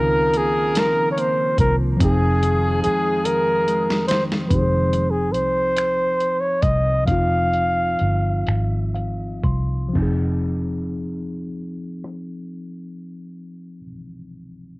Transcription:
Already playing: C#2 C#3 D#3 F3 G#3 C4 D#4 F4 A#4
0.34 A#3 G#4, closed hi-hat
0.75 F3 A#4, snare, closed hi-hat
1.11 C#5
1.17 A#3 C5, closed hi-hat
1.58 C2 F3 A#4, kick, closed hi-hat
1.97 F2 F3 C4 D#4 G#4, kick, closed hi-hat
2.01 F1 D#4 G#4
2.42 D#3, closed hi-hat
2.83 G#3 G#4, muted fingered electric bass stroke, closed hi-hat
3.25 D#3 A#4, closed hi-hat
3.67 G#3, closed hi-hat
3.90 snare
4.08 D#3 C5, snare, closed hi-hat
4.32 snare
4.48 F1 F3 C4 C5, kick, closed hi-hat
4.52 D#4 G4
4.61 G#4
4.93 closed hi-hat
5.11 G#4
5.32 C2 C5, closed hi-hat
5.77 finger snap, closed hi-hat
6.20 closed hi-hat
6.40 C#5
6.62 C2 D#5, kick, closed hi-hat
7.05 F1 F3 C4 F5, kick, closed hi-hat
7.10 D#4 F4
7.54 closed hi-hat
7.99 G1, closed hi-hat
8.47 G#1, finger snap, closed hi-hat
8.95 F5, closed hi-hat
9.44 C2 C6, kick, closed hi-hat
9.88 F3
9.93 F1 C4, kick, crash
9.98 D#4
10.02 G#4
12.04 cross-stick

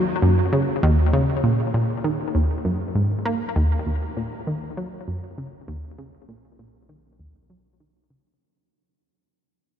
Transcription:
0.22 F#2
0.53 C#3
0.83 D#2
1.13 C#3
1.44 A#2
1.74 A#2
2.04 D#3
2.35 D#2
2.65 F#2
2.95 G#2
3.26 A#3
3.56 D#2
3.86 D#2
4.17 A#2
4.47 D#3
4.77 F#3
5.08 F#2
5.38 C#3
5.68 D#2
5.98 C#3
6.29 A#2
6.59 A#2
6.89 D#3
7.20 D#2
7.50 F#3
7.80 D#3
8.10 C#3

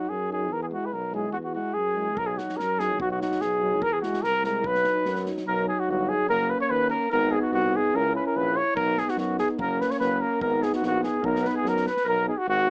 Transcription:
Already playing: F#4
0.09 F#2 G#4
0.29 F#3 D#4 G#4
0.50 E2 A#4
0.63 G#4
0.71 G#3 E4 F#4
0.86 B4
0.92 B1 A#4
1.12 G#3 E4 G#4
1.33 E2 F#4
1.45 F#4
1.53 G#3 E4 F#4
1.74 F#2 G#4
1.94 G#3 E4
2.15 B1 A#4, kick
2.26 G#4
2.36 F#3 D#4 F#4, snare
2.49 snare
2.57 F#2 A#4, snare
2.77 F#3 D#4 G#4, snare
2.82 G#4
2.99 B1 F#4, kick
3.10 F#4
3.18 F#3 D#4 F#4, snare
3.22 F#4
3.32 snare
3.40 B1 G#4, snare
3.59 F#3 D#4
3.80 E2 A#4, kick
3.92 G#4
4.01 G#3 E4 F#4, snare
4.13 snare
4.22 C2 A#4, snare
4.43 G#3 E4 A#4, snare
4.64 B1 B4, kick
4.75 snare
4.84 F#3 D#4, snare
5.05 F#2, snare
5.16 snare
5.25 F#3 D#4, snare
5.37 snare
5.46 B1 F#3 D#4 A#4
5.68 G#4
5.79 F#4
5.88 G1 F#4
6.09 G#4
6.27 F#1 A#3 C#4 A#4
6.50 B4
6.61 C#5
6.70 D#2 B4
6.90 A#4
7.11 G#1 B3 D#4 A#4
7.32 G#4
7.42 F#4
7.52 C2 F#4
7.56 F#4
7.76 G#4
7.93 C#2 C#4 E4 A#4
8.16 B4
8.26 A#4
8.36 A#1 B4
8.57 C#5
8.75 B1 B3 D#4 A#4, kick
8.97 G#4, snare
9.08 F#4, snare
9.16 F#2 F#4, snare
9.20 F#4
9.38 G#4, snare
9.58 F#1 A#3 C#4 A#4, kick
9.81 B4, snare
9.90 C#5, snare
9.99 F#1 B4, snare
10.21 A#4
10.40 G#1 B3 D#4 A#4, kick
10.62 G#4, snare
10.73 F#4, snare
10.81 A#1 F#4, snare
10.87 F#4
11.03 G#4, snare
11.21 B1 B3 D#4 A#4, kick
11.25 A#4
11.36 snare
11.44 B4, snare
11.54 G#4
11.64 F#2 A#4, snare
11.68 A#4
11.77 snare
11.86 B4, snare
11.97 snare
12.05 B1 A#4
12.26 B3 D#4 G#4
12.38 F#4
12.46 G#1 F#4
12.66 B3 D#4

